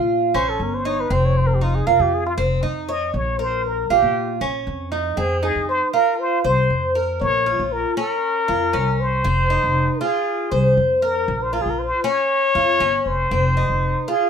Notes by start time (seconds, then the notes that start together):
Already playing: A#2 F4
0.34 A#1 C#4 C5
0.50 A4
0.60 G1 A#4
0.74 C5
0.85 D#4 C#5
1.01 B4
1.10 F1 C4 C5
1.25 C#5
1.37 C5
1.47 A#4
1.55 G4
1.61 D#4 F4
1.75 G#4
1.87 F1 F4 A#4
1.99 F2 G4
2.14 G#4
2.26 F4
2.38 F1 C4
2.63 F2 D#4
2.89 C#5 D#5
3.14 A#1 C#5
3.39 A#4 C5
3.67 A#4
3.90 A#1 F4 G4
4.02 A#2
4.41 A#1 C#4
4.67 F2
4.92 D#4
5.17 F2 C4 G#4
5.43 D#4 G#4
5.55 F2
5.69 C5
5.93 F4 A#4
6.20 C5
6.44 C2 C5
6.70 F2
6.95 A#4
7.21 A#1 C#5
7.46 F4
7.59 A#1
7.72 A#4
7.97 C#4 A#4
8.48 F2 F4
8.73 C2 C#4
9.00 C5
9.24 F1 C4
9.50 D#4
9.63 F1
10.01 F4 G#4
10.52 C2 C5
10.77 F2
11.02 A#4
11.28 A#1
11.43 C5
11.53 F4 A#4
11.61 G#4
11.66 A#1
11.70 A#4
11.79 C5
12.04 C#4 C#5
12.55 F2 F4
12.80 G1 C#4
13.06 F1 C5
13.31 F1 C4
13.57 D#4
13.69 F1
14.08 F4 G#4